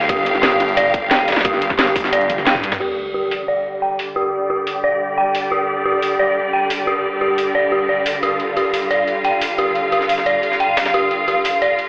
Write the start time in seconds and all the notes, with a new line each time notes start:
Already playing: D3 G3 G4 F5
0.01 snare
0.09 G1 G4, kick, closed hi-hat, ride
0.26 closed hi-hat, ride
0.35 snare
0.43 G4, snare, closed hi-hat, ride
0.52 closed hi-hat
0.60 G1, snare, closed hi-hat, ride
0.69 ride
0.77 D5, closed hi-hat, ride
0.94 kick, closed hi-hat, ride
1.11 G5, snare, closed hi-hat, ride
1.28 snare, closed hi-hat, ride
1.32 snare, ride
1.36 snare, ride
1.41 snare, ride
1.45 G1 G4, kick, closed hi-hat, ride
1.53 snare
1.62 closed hi-hat, ride
1.70 kick, snare
1.79 G4, snare, closed hi-hat, ride
1.87 snare, closed hi-hat
1.96 G1, kick, open hi-hat, ride
2.04 snare
2.13 D5, closed hi-hat, ride
2.21 closed hi-hat
2.30 closed hi-hat, high tom, ride
2.38 snare, high tom
2.46 G2 G5, snare, closed hi-hat, ride
2.55 kick, snare, mid tom
2.63 closed hi-hat, ride
2.72 snare, closed hi-hat, mid tom, ride
2.80 D3 G3 G4 D5, crash, sub drop
3.14 G4
3.31 open hi-hat
3.48 D5
3.82 G5
3.99 open hi-hat
4.16 G4
4.50 G4
4.67 open hi-hat
4.84 D5
5.18 G5
5.35 open hi-hat
5.52 G4
5.85 G4
6.02 open hi-hat
6.19 D5
6.53 G5
6.70 open hi-hat
6.87 G4
7.21 G4
7.38 open hi-hat
7.55 D5
7.72 G4
7.89 D5
8.06 open hi-hat
8.23 F4 G4 F5, ride
8.40 ride
8.57 G4, ride
8.74 open hi-hat, ride
8.82 ride
8.91 D5, ride
9.08 ride
9.24 G5, ride
9.41 open hi-hat, ride
9.58 G4, ride
9.75 ride
9.92 G4, ride
10.01 snare
10.09 open hi-hat, ride
10.18 snare
10.26 D5, ride
10.43 ride
10.52 snare
10.60 G5, ride
10.77 snare, open hi-hat, ride
10.86 snare, ride
10.94 G4, ride
11.11 ride
11.28 G4, ride
11.45 open hi-hat, ride
11.53 ride
11.62 D5, ride
11.79 ride